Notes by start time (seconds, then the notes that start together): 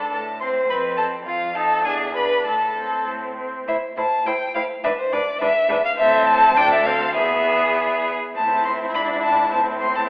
Already playing: D4 A4 A5
0.12 A2 A4 A5
0.41 C4 C5 C6
0.69 F2 C4 B4 B5
0.97 C4 A4 A5
1.26 F2 F4 F5
1.55 D#4 A4 A5
1.84 E2 D4 G#4 G#5
2.14 D4 B4 B5
2.45 A2 A4 A5
2.76 C4
3.07 A2
3.38 C4
3.67 A2 E4 C5 E5
3.97 A2 E4 C5 A5
4.26 A2 E4 C5 G5
4.55 A2 E4 C5 F5
4.84 G#2 D4 B4 E5
5.00 C5
5.12 G#2 D4 B4 D5
5.41 G#2 D4 B4 E5
5.69 G#2 D4 B4
5.85 F5
5.97 A2 C4 A4 E5
6.28 A5
6.56 D2 D4 A4 G5
6.72 E5
6.86 C4 F5
7.15 E2 B3 G#4 E5
8.36 A2 C4 E4 A5
8.65 C6
8.94 G#2 D4 B5
9.23 A5
9.52 A2 C4 A5
9.81 C6
9.96 A5